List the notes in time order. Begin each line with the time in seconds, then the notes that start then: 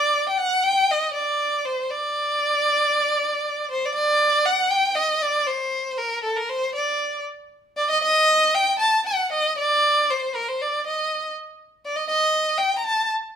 Already playing: D5
0.29 G5
0.38 F#5
0.64 G5
0.91 D#5
1.14 D5
1.65 C5
1.90 D5
3.71 C5
3.85 D5
3.95 D5
4.45 F#5
4.71 G5
4.96 D#5
5.22 D5
5.47 C5
5.91 C5
5.97 A#4
6.23 A4
6.36 A#4
6.49 C5
6.75 D5
7.77 D5
7.90 D#5
8.03 D#5
8.55 G5
8.79 A5
9.06 F#5
9.32 D#5
9.58 D5
10.10 C5
10.35 A#4
10.49 C5
10.62 D5
10.86 D#5
11.85 D5
11.96 D#5
12.08 D#5
12.58 G5
12.78 A#5
12.84 A5